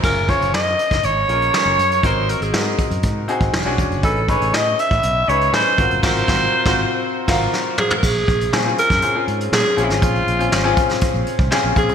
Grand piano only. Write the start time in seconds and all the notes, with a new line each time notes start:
0.02 C#4 F4 G#4 A#4
0.28 C#4 F4 G#4 C5
1.28 C#4 F4 G#4 A#4
1.53 C#4 F4 G#4 A#4
2.03 C4 D#4 F#4 A#4
2.52 C4 D#4 F#4 A#4
3.28 C4 D#4 F#4 G#4
3.65 C#4 D4 F#4 G#4
4.03 C#4 D#4 G#4 B4
4.28 C#4 D#4 G#4 B4
5.27 C#4 D#4 G#4 B4
5.53 C#4 D#4 G#4 B4
5.77 C4 F4 F#4 A#4
6.03 C4 F4 F#4 A#4
6.27 C4 F4 F#4 C5
6.65 C4 F4 F#4 C5
7.28 C4 F4 F#4 A#4 F5
8.52 C4 C#4 F4 G#4
8.65 C4 C#4 F4 G#4
9.02 C4 C#4 F4 G#4
9.15 C4 C#4 F4 G#4
9.76 C4 C#4 F4 G#4
10.39 C4 C#4 F4 G#4
10.64 C4 C#4 F4 G#4
11.51 C4 C#4 F4 G#4